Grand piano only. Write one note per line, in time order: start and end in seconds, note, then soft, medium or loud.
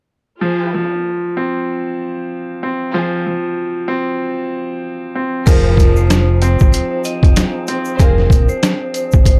0.41 0.73 F3 medium
0.74 2.32 F3 medium
1.37 2.62 C4 medium
2.63 3.86 C4 medium
2.94 3.25 F3 medium
3.27 4.84 F3 medium
3.88 5.14 C4 medium
5.15 5.47 C4 medium
5.47 5.78 F3 medium
5.80 7.37 F3 medium
6.42 7.67 C4 medium
7.68 8.00 C4 medium